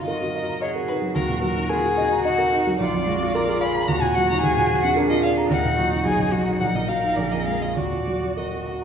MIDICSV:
0, 0, Header, 1, 5, 480
1, 0, Start_track
1, 0, Key_signature, -6, "minor"
1, 0, Tempo, 544465
1, 1021, Time_signature, 3, 2, 24, 8
1, 5824, Tempo, 589971
1, 7643, End_track
2, 0, Start_track
2, 0, Title_t, "Violin"
2, 0, Program_c, 0, 40
2, 54, Note_on_c, 0, 75, 111
2, 526, Note_off_c, 0, 75, 0
2, 540, Note_on_c, 0, 73, 107
2, 611, Note_off_c, 0, 73, 0
2, 776, Note_on_c, 0, 71, 95
2, 847, Note_off_c, 0, 71, 0
2, 1015, Note_on_c, 0, 70, 117
2, 1248, Note_off_c, 0, 70, 0
2, 1254, Note_on_c, 0, 70, 123
2, 1490, Note_on_c, 0, 68, 127
2, 1503, Note_off_c, 0, 70, 0
2, 1971, Note_off_c, 0, 68, 0
2, 1976, Note_on_c, 0, 66, 127
2, 2459, Note_off_c, 0, 66, 0
2, 2465, Note_on_c, 0, 74, 127
2, 3182, Note_on_c, 0, 83, 127
2, 3195, Note_off_c, 0, 74, 0
2, 3417, Note_on_c, 0, 82, 117
2, 3430, Note_off_c, 0, 83, 0
2, 3541, Note_on_c, 0, 80, 127
2, 3555, Note_off_c, 0, 82, 0
2, 3657, Note_on_c, 0, 78, 127
2, 3670, Note_off_c, 0, 80, 0
2, 3782, Note_off_c, 0, 78, 0
2, 3788, Note_on_c, 0, 82, 121
2, 3886, Note_off_c, 0, 82, 0
2, 3891, Note_on_c, 0, 80, 127
2, 4247, Note_off_c, 0, 80, 0
2, 4252, Note_on_c, 0, 78, 121
2, 4322, Note_off_c, 0, 78, 0
2, 4496, Note_on_c, 0, 75, 118
2, 4602, Note_off_c, 0, 75, 0
2, 4608, Note_on_c, 0, 77, 126
2, 4678, Note_off_c, 0, 77, 0
2, 4852, Note_on_c, 0, 78, 127
2, 5326, Note_off_c, 0, 78, 0
2, 5339, Note_on_c, 0, 68, 127
2, 5576, Note_on_c, 0, 66, 109
2, 5589, Note_off_c, 0, 68, 0
2, 5826, Note_on_c, 0, 78, 110
2, 5838, Note_off_c, 0, 66, 0
2, 5945, Note_on_c, 0, 75, 100
2, 5957, Note_off_c, 0, 78, 0
2, 6049, Note_on_c, 0, 77, 110
2, 6061, Note_off_c, 0, 75, 0
2, 6275, Note_on_c, 0, 74, 99
2, 6287, Note_off_c, 0, 77, 0
2, 6403, Note_on_c, 0, 75, 94
2, 6416, Note_off_c, 0, 74, 0
2, 6517, Note_on_c, 0, 77, 102
2, 6529, Note_off_c, 0, 75, 0
2, 6647, Note_on_c, 0, 75, 90
2, 6660, Note_off_c, 0, 77, 0
2, 6767, Note_off_c, 0, 75, 0
2, 6772, Note_on_c, 0, 74, 100
2, 7261, Note_on_c, 0, 75, 80
2, 7273, Note_off_c, 0, 74, 0
2, 7643, Note_off_c, 0, 75, 0
2, 7643, End_track
3, 0, Start_track
3, 0, Title_t, "Cello"
3, 0, Program_c, 1, 42
3, 80, Note_on_c, 1, 66, 78
3, 150, Note_off_c, 1, 66, 0
3, 309, Note_on_c, 1, 70, 84
3, 552, Note_on_c, 1, 68, 93
3, 565, Note_off_c, 1, 70, 0
3, 1024, Note_off_c, 1, 68, 0
3, 1029, Note_on_c, 1, 66, 90
3, 1495, Note_off_c, 1, 66, 0
3, 1514, Note_on_c, 1, 65, 81
3, 1584, Note_off_c, 1, 65, 0
3, 1757, Note_on_c, 1, 63, 90
3, 1983, Note_on_c, 1, 66, 85
3, 1996, Note_off_c, 1, 63, 0
3, 2221, Note_off_c, 1, 66, 0
3, 2227, Note_on_c, 1, 63, 90
3, 2297, Note_off_c, 1, 63, 0
3, 2468, Note_on_c, 1, 65, 90
3, 2708, Note_on_c, 1, 66, 97
3, 2721, Note_off_c, 1, 65, 0
3, 2932, Note_on_c, 1, 65, 95
3, 2945, Note_off_c, 1, 66, 0
3, 3409, Note_off_c, 1, 65, 0
3, 3414, Note_on_c, 1, 66, 100
3, 3884, Note_off_c, 1, 66, 0
3, 3889, Note_on_c, 1, 68, 115
3, 4843, Note_on_c, 1, 70, 108
3, 4856, Note_off_c, 1, 68, 0
3, 5071, Note_off_c, 1, 70, 0
3, 5076, Note_on_c, 1, 66, 96
3, 5319, Note_on_c, 1, 63, 86
3, 5333, Note_off_c, 1, 66, 0
3, 5815, Note_on_c, 1, 70, 93
3, 5828, Note_off_c, 1, 63, 0
3, 6750, Note_off_c, 1, 70, 0
3, 6755, Note_on_c, 1, 66, 73
3, 7643, Note_off_c, 1, 66, 0
3, 7643, End_track
4, 0, Start_track
4, 0, Title_t, "Violin"
4, 0, Program_c, 2, 40
4, 0, Note_on_c, 2, 65, 70
4, 539, Note_off_c, 2, 65, 0
4, 545, Note_on_c, 2, 66, 85
4, 1014, Note_off_c, 2, 66, 0
4, 1020, Note_on_c, 2, 66, 80
4, 1983, Note_on_c, 2, 63, 96
4, 1996, Note_off_c, 2, 66, 0
4, 2478, Note_off_c, 2, 63, 0
4, 2483, Note_on_c, 2, 65, 85
4, 2553, Note_off_c, 2, 65, 0
4, 2715, Note_on_c, 2, 65, 90
4, 2953, Note_on_c, 2, 70, 91
4, 2966, Note_off_c, 2, 65, 0
4, 3194, Note_on_c, 2, 68, 90
4, 3207, Note_off_c, 2, 70, 0
4, 3427, Note_off_c, 2, 68, 0
4, 3433, Note_on_c, 2, 66, 104
4, 4386, Note_on_c, 2, 62, 85
4, 4399, Note_off_c, 2, 66, 0
4, 4862, Note_on_c, 2, 63, 100
4, 4875, Note_off_c, 2, 62, 0
4, 5340, Note_off_c, 2, 63, 0
4, 5345, Note_on_c, 2, 63, 87
4, 5795, Note_off_c, 2, 63, 0
4, 5834, Note_on_c, 2, 63, 76
4, 6297, Note_on_c, 2, 68, 84
4, 6309, Note_off_c, 2, 63, 0
4, 6774, Note_on_c, 2, 66, 69
4, 6786, Note_off_c, 2, 68, 0
4, 7250, Note_off_c, 2, 66, 0
4, 7255, Note_on_c, 2, 66, 60
4, 7643, Note_off_c, 2, 66, 0
4, 7643, End_track
5, 0, Start_track
5, 0, Title_t, "Grand piano"
5, 0, Program_c, 3, 0
5, 0, Control_c, 3, 64, 127
5, 0, Note_on_c, 3, 42, 70
5, 0, Note_on_c, 3, 51, 56
5, 0, Note_on_c, 3, 54, 57
5, 0, Note_on_c, 3, 63, 55
5, 67, Note_on_c, 3, 70, 73
5, 137, Note_off_c, 3, 63, 0
5, 187, Note_on_c, 3, 66, 65
5, 255, Note_off_c, 3, 70, 0
5, 308, Note_on_c, 3, 75, 64
5, 375, Note_off_c, 3, 66, 0
5, 424, Note_on_c, 3, 82, 69
5, 496, Note_off_c, 3, 75, 0
5, 545, Note_on_c, 3, 75, 66
5, 614, Note_off_c, 3, 82, 0
5, 664, Note_on_c, 3, 70, 64
5, 735, Note_off_c, 3, 75, 0
5, 778, Note_on_c, 3, 63, 64
5, 855, Note_off_c, 3, 70, 0
5, 896, Note_off_c, 3, 54, 0
5, 896, Note_on_c, 3, 54, 62
5, 972, Note_off_c, 3, 63, 0
5, 984, Note_off_c, 3, 42, 0
5, 1014, Note_on_c, 3, 39, 82
5, 1019, Note_off_c, 3, 54, 0
5, 1039, Control_c, 3, 64, 0
5, 1043, Note_off_c, 3, 51, 0
5, 1138, Note_on_c, 3, 46, 55
5, 1192, Control_c, 3, 64, 127
5, 1257, Note_on_c, 3, 54, 74
5, 1331, Note_off_c, 3, 46, 0
5, 1375, Note_on_c, 3, 63, 61
5, 1451, Note_off_c, 3, 54, 0
5, 1497, Note_on_c, 3, 70, 77
5, 1571, Note_off_c, 3, 63, 0
5, 1625, Note_on_c, 3, 66, 77
5, 1692, Note_off_c, 3, 70, 0
5, 1741, Note_on_c, 3, 75, 68
5, 1816, Note_off_c, 3, 66, 0
5, 1864, Note_on_c, 3, 82, 81
5, 1935, Note_off_c, 3, 75, 0
5, 1986, Note_on_c, 3, 75, 83
5, 2058, Note_off_c, 3, 82, 0
5, 2102, Note_on_c, 3, 70, 71
5, 2182, Note_off_c, 3, 75, 0
5, 2227, Note_on_c, 3, 63, 69
5, 2304, Note_off_c, 3, 70, 0
5, 2354, Note_on_c, 3, 54, 81
5, 2428, Note_off_c, 3, 63, 0
5, 2440, Note_off_c, 3, 39, 0
5, 2466, Note_on_c, 3, 34, 84
5, 2478, Note_off_c, 3, 54, 0
5, 2496, Control_c, 3, 64, 0
5, 2583, Note_on_c, 3, 41, 70
5, 2626, Control_c, 3, 64, 127
5, 2705, Note_on_c, 3, 56, 71
5, 2781, Note_off_c, 3, 41, 0
5, 2830, Note_on_c, 3, 65, 69
5, 2901, Note_off_c, 3, 56, 0
5, 2952, Note_on_c, 3, 70, 94
5, 3023, Note_off_c, 3, 65, 0
5, 3069, Note_on_c, 3, 68, 77
5, 3144, Note_off_c, 3, 70, 0
5, 3182, Note_on_c, 3, 77, 74
5, 3263, Note_off_c, 3, 68, 0
5, 3306, Note_on_c, 3, 82, 83
5, 3379, Note_off_c, 3, 77, 0
5, 3397, Note_off_c, 3, 34, 0
5, 3423, Note_on_c, 3, 39, 93
5, 3429, Note_off_c, 3, 82, 0
5, 3448, Control_c, 3, 64, 0
5, 3540, Note_on_c, 3, 46, 70
5, 3605, Control_c, 3, 64, 127
5, 3666, Note_on_c, 3, 54, 75
5, 3736, Note_off_c, 3, 46, 0
5, 3796, Note_on_c, 3, 63, 78
5, 3858, Note_off_c, 3, 54, 0
5, 3888, Note_off_c, 3, 39, 0
5, 3907, Note_on_c, 3, 39, 92
5, 3911, Note_off_c, 3, 63, 0
5, 3924, Control_c, 3, 64, 0
5, 4032, Note_on_c, 3, 46, 71
5, 4055, Control_c, 3, 64, 127
5, 4143, Note_on_c, 3, 53, 72
5, 4218, Note_off_c, 3, 46, 0
5, 4267, Note_on_c, 3, 62, 72
5, 4333, Note_off_c, 3, 53, 0
5, 4375, Note_on_c, 3, 70, 85
5, 4454, Note_off_c, 3, 62, 0
5, 4501, Note_on_c, 3, 65, 83
5, 4568, Note_off_c, 3, 70, 0
5, 4626, Note_on_c, 3, 74, 81
5, 4691, Note_off_c, 3, 65, 0
5, 4738, Note_on_c, 3, 82, 84
5, 4814, Note_off_c, 3, 74, 0
5, 4829, Note_off_c, 3, 39, 0
5, 4852, Note_on_c, 3, 39, 96
5, 4858, Note_off_c, 3, 82, 0
5, 4875, Control_c, 3, 64, 0
5, 4980, Note_on_c, 3, 46, 71
5, 5013, Control_c, 3, 64, 127
5, 5092, Note_on_c, 3, 54, 69
5, 5171, Note_off_c, 3, 46, 0
5, 5205, Note_on_c, 3, 63, 82
5, 5287, Note_off_c, 3, 54, 0
5, 5321, Note_off_c, 3, 39, 0
5, 5332, Note_off_c, 3, 63, 0
5, 5332, Note_on_c, 3, 35, 90
5, 5355, Control_c, 3, 64, 0
5, 5462, Note_on_c, 3, 42, 63
5, 5491, Control_c, 3, 64, 127
5, 5572, Note_on_c, 3, 54, 69
5, 5655, Note_off_c, 3, 42, 0
5, 5703, Note_on_c, 3, 63, 65
5, 5772, Note_off_c, 3, 54, 0
5, 5808, Note_off_c, 3, 35, 0
5, 5825, Note_on_c, 3, 34, 83
5, 5826, Note_off_c, 3, 63, 0
5, 5840, Control_c, 3, 64, 0
5, 5939, Note_on_c, 3, 46, 58
5, 5989, Control_c, 3, 64, 127
5, 6056, Note_on_c, 3, 54, 61
5, 6123, Note_off_c, 3, 46, 0
5, 6173, Note_on_c, 3, 63, 61
5, 6241, Note_off_c, 3, 54, 0
5, 6273, Note_off_c, 3, 34, 0
5, 6288, Note_on_c, 3, 34, 80
5, 6289, Note_off_c, 3, 63, 0
5, 6304, Control_c, 3, 64, 0
5, 6416, Note_on_c, 3, 41, 57
5, 6439, Control_c, 3, 64, 127
5, 6530, Note_on_c, 3, 56, 53
5, 6604, Note_off_c, 3, 41, 0
5, 6641, Note_on_c, 3, 65, 56
5, 6723, Note_off_c, 3, 56, 0
5, 6757, Note_off_c, 3, 34, 0
5, 6765, Note_on_c, 3, 39, 65
5, 6767, Note_off_c, 3, 65, 0
5, 6789, Control_c, 3, 64, 0
5, 6894, Note_on_c, 3, 46, 51
5, 6951, Control_c, 3, 64, 127
5, 7018, Note_on_c, 3, 54, 57
5, 7091, Note_off_c, 3, 46, 0
5, 7144, Note_on_c, 3, 66, 54
5, 7213, Note_off_c, 3, 54, 0
5, 7260, Note_on_c, 3, 70, 57
5, 7337, Note_off_c, 3, 66, 0
5, 7384, Note_on_c, 3, 66, 57
5, 7455, Note_off_c, 3, 70, 0
5, 7500, Note_on_c, 3, 78, 49
5, 7577, Note_off_c, 3, 66, 0
5, 7643, Note_off_c, 3, 39, 0
5, 7643, Note_off_c, 3, 78, 0
5, 7643, End_track
0, 0, End_of_file